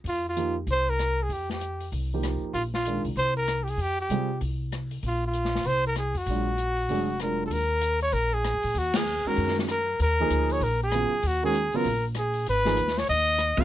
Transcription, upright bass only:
X:1
M:4/4
L:1/8
Q:"Swing" 1/4=193
K:Fdor
V:1 name="Upright bass" clef=bass
F,,4 C,,4 | F,,4 C,,3 z | B,,,3 C,, C,,4 | F,,2 C,2 C,,4 |
B,,,4 C,,3 F,, | B,,,4 F,,,4 | [K:Ebm] E,,4 B,,,2- (3B,,, G,, B,, | E,,3 z G,,4 |
E,,2 =D,,2 B,,,3 z | E,,3 z B,,,4 | A,,,2 E,,2 E,,3 =A,,, |]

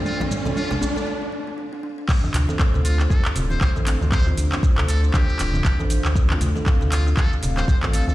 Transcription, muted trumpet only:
X:1
M:4/4
L:1/16
Q:"Swing 16ths" 1/4=118
K:Dm
V:1 name="Muted trumpet"
F z3 F z8 z3 | z6 F z A z2 c c z3 | c z4 z A z G6 z2 | z6 F z A z2 c c z A A |]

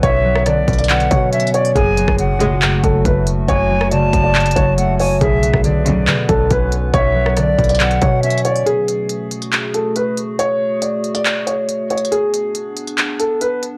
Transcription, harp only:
X:1
M:4/4
L:1/8
Q:1/4=139
K:F#m
V:1 name="Harp" clef=bass
[B,,F,C] F, D, B,, B,, F, C2 | F,, F, C, F,, F,, F, A,2 | F,, F, C, F,, F,, F, A,2 | B,, F, D, B,, B,, F, C2 |
B,, F, D, B,, B,, F, C2 | z8 | z8 | z8 |]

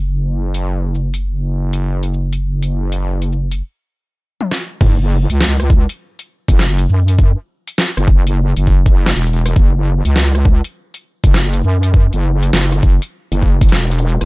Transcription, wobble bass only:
X:1
M:4/4
L:1/16
Q:"Swing 16ths" 1/4=101
K:C#phr
V:1 name="Wobble bass" clef=bass
F,,,16- | F,,,8 z8 | F,,,3 C,,4 z4 F,,,3 F,,2- | F,, z4 F,,,4 F,,,4 E,,,3 |
F,,,3 C,,4 z4 F,,,3 F,,2- | F,, F,,,3 F,,,2 F,,, z2 F,,,3 E,,,3 F,,, |]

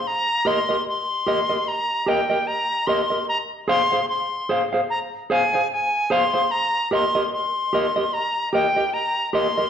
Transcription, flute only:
X:1
M:4/4
L:1/8
Q:"Swing 16ths" 1/4=74
K:Eb
V:1 name="Flute"
b c' c'2 b g b c' | b c' c' z b a a c' | b c' c'2 b g b c' |]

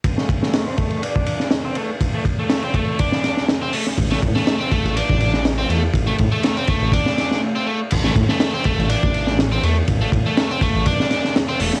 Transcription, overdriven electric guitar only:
X:1
M:4/4
L:1/16
Q:"Swing 16ths" 1/4=122
K:Am
V:1 name="Overdriven electric guitar"
z A, z A,2 C A,2 D4 z C A, z | z A, z A,2 C A,2 D4 z C A, z | z A, z A,2 C A,2 D4 z C A, z | z A, z A,2 C A,2 D4 z C A, z |
z A, z A,2 C A,2 D4 z C A, z | z A, z A,2 C A,2 D4 z C A, z |]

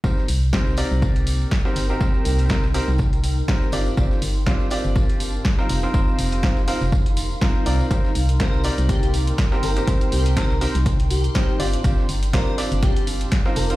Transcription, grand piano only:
X:1
M:4/4
L:1/16
Q:"Swing 16ths" 1/4=122
K:Gphr
V:1 name="Grand piano"
[CEGBc]2 z2 [CEGBc]2 [CEGBd]6- [CEGBd] [CEGBc]2 [CEGBc] | [CEGBc]4 [CEGBc] z [CEGBc] z4 z [CEGBc]2 [CDFGd]2 | [CDFGc]2 z2 [CDFGc]2 [CDFGd]6- [CDFGd] [CEFBc]2 [CEFBc] | [CEFBc]4 [CEFBc] z [CEFBc] z4 z [CEFBc]2 [CEFBd]2 |
[CEGBc]2 z2 [CEGBc]2 [CEGBd]6- [CEGBd] [CEGBc]2 [CEGBc] | [CEGBc]4 [CEGBc] z [CEGBc] z4 z [CEGBc]2 [CDFGd]2 | [CDFGc]2 z2 [CDFGc]2 [CDFGd]6- [CDFGd] [CEFBc]2 [CEFBc] |]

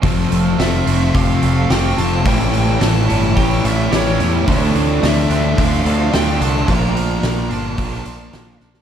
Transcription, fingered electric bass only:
X:1
M:4/4
L:1/8
Q:1/4=109
K:F
V:1 name="Fingered electric bass" clef=bass
F,,, F,,, F,,, F,,, F,,, F,,, F,,, F,,, | A,,,2 A,,, G,,, A,,, A,,, A,,, E,, | D,, D,, D,, D,, D,, D,, D,, C,, | B,,,2 B,,, G,,, B,,, B,,, B,,, B,,, |]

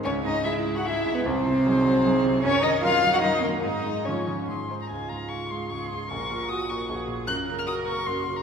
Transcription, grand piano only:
X:1
M:3/4
L:1/8
Q:1/4=150
K:G#phr
V:1 name="Grand piano" clef=bass
C,, G,, [G,EG] G, [G,EG] G,, | ^B,,, ^B,, [F,DG] F, [F,DG] B,, | [K:Db] G,, E, [G,EB] G, [G,EB] E, | A,, A, [F,Fd] F, A,, [Ec] |
D,, A,, F A, D,, A,, | B,,, B,, G B, B,,, B,, | G,, D, G B, G,, D, |]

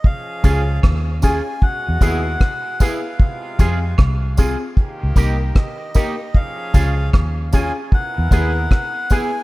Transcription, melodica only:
X:1
M:4/4
L:1/8
Q:"Swing 16ths" 1/4=76
K:Dblyd
V:1 name="Melodica"
f2 z a _g3 f- | f2 z4 e2 | f2 z a _g3 ^g |]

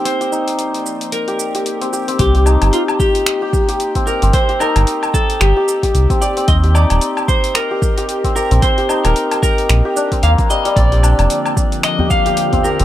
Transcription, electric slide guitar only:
X:1
M:4/4
L:1/16
Q:"Swing 16ths" 1/4=112
K:Cm
V:1 name="Electric slide guitar"
c6 z2 B6 z2 | G4 F2 G8 B2 | c2 B4 =A2 G6 d2 | e2 d4 c2 B6 B2 |
c3 B3 B6 f2 e2 | d8 e2 f4 B2 |]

